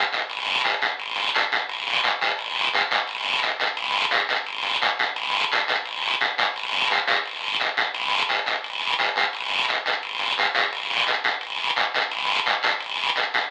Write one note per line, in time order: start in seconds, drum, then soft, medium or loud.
0.13 short guiro medium
0.30 long guiro medium
0.64 short guiro medium
0.82 short guiro medium
0.99 long guiro medium
1.35 short guiro medium
1.52 short guiro medium
1.69 long guiro medium
2.04 short guiro medium
2.21 short guiro medium
2.39 long guiro medium
2.73 short guiro medium
2.91 short guiro medium
3.08 long guiro medium
3.42 short guiro medium
3.60 short guiro medium
3.77 long guiro medium
4.11 short guiro medium
4.29 short guiro medium
4.46 long guiro medium
4.82 short guiro medium
4.99 short guiro medium
5.16 long guiro medium
5.52 short guiro medium
5.68 short guiro medium
5.85 long guiro medium
6.21 short guiro medium
6.38 short guiro medium
6.56 long guiro medium
6.90 short guiro medium
7.08 short guiro medium
7.25 long guiro medium
7.60 short guiro medium
7.77 short guiro medium
7.94 long guiro medium
8.29 short guiro medium
8.46 short guiro medium
8.64 long guiro medium
8.99 short guiro medium
9.16 short guiro medium
9.33 long guiro medium
9.68 short guiro medium
9.86 short guiro medium
10.03 long guiro medium
10.38 short guiro medium
10.55 short guiro medium
10.73 long guiro medium
11.07 short guiro medium
11.24 short guiro medium
11.41 long guiro medium
11.76 short guiro medium
11.94 short guiro medium
12.11 long guiro medium
12.46 short guiro medium
12.63 short guiro medium
12.80 long guiro medium
13.16 short guiro medium
13.34 short guiro medium